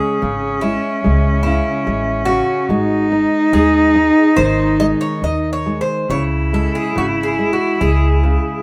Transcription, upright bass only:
0.23 0.76 G#1 medium
1.06 1.59 C#2 medium
1.87 2.41 A1 medium
2.69 3.24 G#1 medium
3.53 4.08 D#2 medium
4.38 4.93 G#1 medium
5.22 5.78 D#2 medium
6.10 6.66 C#2 medium
6.97 7.52 G#1 medium
7.81 8.36 C#2 medium

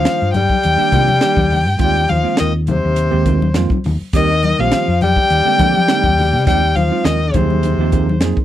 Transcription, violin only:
0.00 0.32 F5 medium
0.33 1.76 G5 loud
1.80 2.11 G5 loud
2.09 2.39 F5 medium
2.40 2.53 D#5 medium
2.69 3.52 C5 medium
4.15 4.61 D#5 medium
4.60 5.01 F5 medium
5.02 6.44 G5 loud
6.48 6.77 G5 loud
6.76 7.06 F5 medium
7.05 7.36 D#5 medium
7.35 8.23 C5 medium

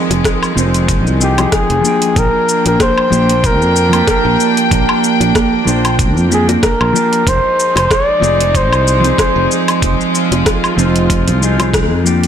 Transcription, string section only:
0.00 2.12 D#3 medium
0.00 2.12 F3 medium
0.00 2.12 G#3 medium
2.16 7.23 A#3 medium
2.16 7.23 D4 medium
2.16 7.23 G5 medium
7.26 12.27 F3 medium
7.26 12.27 G#3 medium
7.26 9.79 D#4 medium
9.82 12.27 F4 medium

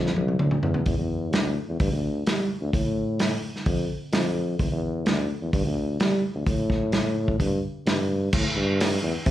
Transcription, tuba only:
0.00 0.15 F2 medium
0.16 0.37 C2 medium
0.40 0.61 D2 medium
0.63 0.84 E2 medium
0.87 0.97 E2 medium
0.98 1.35 E2 medium
1.33 1.55 D2 medium
1.69 1.79 E2 medium
1.80 1.91 G2 loud
1.92 2.24 D2 medium
2.27 2.48 G3 medium
2.61 2.72 D2 medium
2.73 3.35 A2 medium
3.66 3.88 F2 medium
4.12 4.56 F2 medium
4.60 4.70 E2 medium
4.72 5.09 E2 medium
5.07 5.29 D2 medium
5.42 5.52 E2 medium
5.53 5.64 G2 medium
5.65 5.98 D2 medium
6.01 6.22 G3 loud
6.35 6.46 D2 medium
6.47 7.36 A2 medium
7.40 7.61 G2 medium
7.86 8.30 G2 medium
8.33 8.44 A2 medium
8.56 9.00 G2 medium
9.03 9.14 E2 loud
9.26 9.31 C3 loud

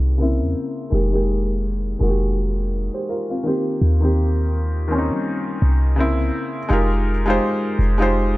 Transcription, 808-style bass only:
0.00 0.42 C2 loud
0.41 0.55 E2 medium
0.92 1.96 F1 loud
2.01 2.90 F1 loud
3.81 5.12 D#2 loud
5.11 5.59 G3 loud
5.62 6.31 C2 loud
6.70 7.40 F1 loud
7.79 8.37 F1 loud

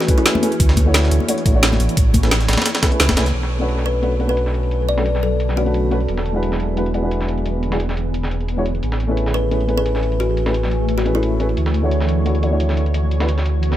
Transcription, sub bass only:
0.60 1.10 D2 loud
1.11 1.20 D2 loud
1.46 1.79 A1 medium
1.80 1.88 A1 loud
1.97 2.47 A1 loud
2.48 2.57 A1 loud
3.00 3.08 C#2 loud
3.09 3.19 E1 loud
3.17 3.33 C#2 medium
3.34 6.07 B1 medium
6.09 8.81 E1 medium
8.83 11.56 A1 medium
11.57 13.77 D2 medium

